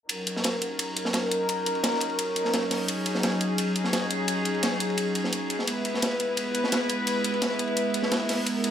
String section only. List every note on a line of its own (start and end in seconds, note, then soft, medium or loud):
0.09 5.64 F#3 medium
0.09 5.64 C#4 medium
0.09 5.64 D#4 medium
0.09 2.86 A#4 medium
2.88 5.65 G#4 medium
5.67 8.71 G#3 medium
5.67 8.71 B3 medium
5.67 8.71 E4 medium
5.67 8.44 B4 medium
8.47 8.71 A#4 medium